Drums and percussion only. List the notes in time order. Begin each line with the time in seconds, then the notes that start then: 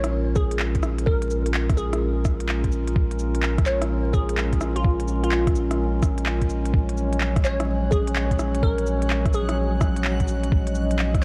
0.04 cross-stick, closed hi-hat
0.36 kick, cabasa
0.51 closed hi-hat
0.59 clap
0.75 kick, closed hi-hat
0.83 cross-stick, cabasa
0.98 closed hi-hat
1.07 kick
1.22 closed hi-hat
1.30 cabasa
1.46 closed hi-hat
1.54 clap
1.70 kick, cross-stick, closed hi-hat
1.78 cabasa
1.93 cross-stick, closed hi-hat
2.25 kick, cross-stick, cabasa
2.40 closed hi-hat
2.49 clap
2.64 kick, closed hi-hat
2.72 cabasa
2.87 closed hi-hat
2.96 kick
3.11 closed hi-hat
3.19 cabasa
3.35 closed hi-hat
3.43 clap
3.58 kick, cross-stick, closed hi-hat
3.66 clap, cabasa
3.82 cross-stick, closed hi-hat
4.14 kick, cabasa
4.29 closed hi-hat
4.37 clap
4.53 kick, closed hi-hat
4.61 cross-stick, cabasa
4.76 closed hi-hat
4.84 kick
5.00 closed hi-hat
5.08 cabasa
5.24 closed hi-hat
5.31 clap
5.47 kick, cross-stick, closed hi-hat
5.55 cabasa
5.71 cross-stick, closed hi-hat
6.02 kick, cross-stick, cabasa
6.18 closed hi-hat
6.26 clap
6.41 kick, closed hi-hat
6.50 cabasa
6.65 closed hi-hat
6.74 kick
6.89 closed hi-hat
6.97 cabasa
7.13 closed hi-hat
7.20 clap
7.36 kick, cross-stick, closed hi-hat
7.45 clap, cabasa
7.60 cross-stick, closed hi-hat
7.92 kick, cabasa
8.07 closed hi-hat
8.16 clap
8.31 kick, closed hi-hat
8.39 cross-stick, cabasa
8.55 closed hi-hat
8.63 kick
8.78 closed hi-hat
8.87 cabasa
9.02 closed hi-hat
9.10 clap
9.26 kick, cross-stick, closed hi-hat
9.34 cabasa
9.49 cross-stick, closed hi-hat
9.81 kick, cross-stick, cabasa
9.96 closed hi-hat
10.04 clap
10.20 kick, closed hi-hat
10.28 cabasa
10.43 closed hi-hat
10.52 kick
10.67 closed hi-hat
10.75 cabasa
10.91 closed hi-hat
10.99 clap
11.14 kick, cross-stick, closed hi-hat